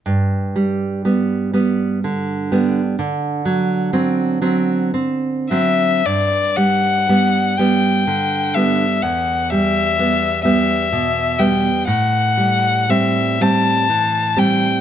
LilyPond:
<<
  \new Staff \with { instrumentName = "Violin" } { \time 6/8 \key g \major \tempo 4. = 41 r2. | r2 r8 e''8 | d''8 fis''4 g''4 e''8 | fis''8 e''4 e''4 g''8 |
fis''4 e''8 a''4 g''8 | }
  \new Staff \with { instrumentName = "Nylon-string guitar" } { \clef bass \time 6/8 \key g \major g,8 g8 <g b>8 <g b>8 d8 <g b>8 | d8 fis8 <fis c'>8 <fis c'>8 c'8 <fis c'>8 | g,8 g8 <g b>8 <g b>8 d8 <g b>8 | e,8 g8 <g b>8 <g b>8 b,8 <g b>8 |
a,8 g8 <g c'>8 <g c'>8 e8 <g c'>8 | }
>>